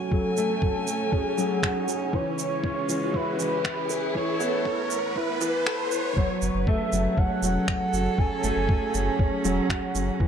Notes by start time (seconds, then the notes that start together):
Already playing: F#3 A3 C#4 F#4 G#5, riser
0.12 F#3 A4, kick
0.37 A3, shaker
0.62 F#3, kick
0.87 shaker
1.12 C#4 G#4, kick
1.38 F#3, shaker
1.63 F#4, finger snap, kick
1.88 F#3, shaker
2.13 C#3 E3 C#5, kick
2.37 G#3, shaker
2.63 C#4, kick
2.89 E3, shaker
3.06 E4
3.13 E4 B4, kick
3.39 E3, shaker
3.64 finger snap, kick
3.89 G#4, shaker
4.15 A2 E3 C#5, kick
4.34 B3
4.40 B3, shaker
4.65 E3, kick
4.70 E3
4.91 shaker
5.07 B4
5.16 E4 B4, kick
5.41 E3, shaker
5.66 A4 B4, finger snap, kick
5.92 E3, shaker
6.17 F#3 C#5, kick
6.42 F#1, shaker
6.55 F#1 C#4
6.67 A3 E5, kick
6.73 G#4
6.93 F#1 F#3, shaker
7.18 C#4 F#5, kick
7.26 A4
7.42 E1 F#3, shaker
7.68 finger snap, kick
7.93 F#1 F#4, shaker
8.18 F#3 G#5, kick
8.43 F#1 A3, shaker
8.56 F#1
8.69 F#3, kick
8.94 F#1, shaker
9.19 C#4, kick
9.45 E1 F#3, shaker
9.70 F#4, finger snap, kick
9.95 F#1 F#3, shaker
10.20 C#3 E3, kick